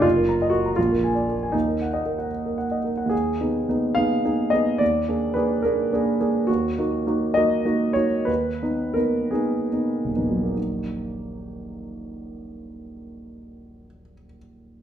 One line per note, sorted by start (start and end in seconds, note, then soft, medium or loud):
0.00 0.72 F#1 soft
0.00 0.51 F4 medium
0.16 0.35 A#4 soft
0.29 0.48 A#5 soft
0.42 0.61 D#5 soft
0.50 0.76 F#4 medium
0.50 0.72 A#4 soft
0.66 0.78 A#5 soft
0.76 1.52 A#1 soft
0.76 1.54 F4 medium
0.92 1.11 A#4 soft
1.04 1.24 G#5 soft
1.15 1.36 D5 soft
1.29 1.49 A#4 soft
1.43 1.55 G#5 soft
1.52 3.04 D#2 soft
1.52 2.31 D#4 soft
1.68 1.88 A#4 soft
1.82 2.01 F#5 soft
1.93 2.14 D#5 soft
2.06 2.26 A#4 soft
2.19 2.56 F#5 soft
2.46 2.66 A#4 soft
2.58 2.79 F#5 soft
2.71 2.92 D#5 soft
2.84 3.06 A#4 soft
2.97 3.11 F#5 soft
3.06 3.36 D#2 soft
3.06 3.40 G#4 soft
3.41 3.66 B3 soft
3.41 3.66 D#4 soft
3.41 3.66 G#4 soft
3.69 3.94 B3 soft
3.69 3.94 D#4 soft
3.69 3.95 G#4 soft
3.95 4.22 B3 soft
3.95 4.22 D#4 soft
3.95 4.22 G#4 soft
3.95 4.51 F5 medium
4.24 4.50 B3 soft
4.24 4.50 D#4 soft
4.24 4.50 G#4 soft
4.50 4.78 B3 soft
4.50 4.78 D#4 soft
4.50 4.78 G#4 soft
4.50 4.79 D#5 medium
4.78 5.08 D#2 soft
4.78 5.35 D5 medium
5.08 5.33 A#3 soft
5.08 5.33 D4 soft
5.08 5.34 G#4 soft
5.34 5.61 A#3 soft
5.34 5.61 D4 soft
5.34 5.61 G#4 soft
5.34 5.63 B4 medium
5.62 5.89 A#3 soft
5.62 5.89 D4 soft
5.62 5.90 G#4 soft
5.62 6.47 A#4 medium
5.93 6.17 A#3 soft
5.93 6.17 D4 soft
5.93 6.18 G#4 soft
6.20 6.46 A#3 soft
6.20 6.46 D4 soft
6.20 6.46 G#4 soft
6.47 6.77 D#2 soft
6.47 6.78 F#4 soft
6.78 7.03 A#3 soft
6.78 7.04 D#4 soft
6.78 7.04 F#4 soft
7.07 7.32 A#3 soft
7.07 7.33 D#4 soft
7.07 7.33 F#4 soft
7.34 7.62 A#3 soft
7.34 7.63 D#4 soft
7.34 7.63 F#4 soft
7.34 7.95 D#5 medium
7.65 7.92 A#3 soft
7.65 7.93 D#4 soft
7.65 7.93 F#4 soft
7.93 8.25 A#3 soft
7.93 8.25 D#4 soft
7.93 8.25 F#4 soft
7.93 8.27 C#5 medium
8.25 8.60 D#2 soft
8.25 8.95 B4 medium
8.62 8.94 B3 soft
8.62 8.94 D#4 soft
8.94 9.29 B3 soft
8.94 9.30 D#4 soft
8.94 9.32 A#4 soft
9.31 9.69 B3 soft
9.31 9.69 D#4 soft
9.31 10.55 G#4 soft
9.73 10.12 B3 soft
9.73 10.12 D#4 soft
10.05 13.86 D#1 soft
10.16 13.99 A#1 soft
10.16 10.52 B3 soft
10.16 10.52 D#4 soft
10.31 14.12 F#3 soft
10.43 14.24 A#3 soft
10.54 14.35 D#4 soft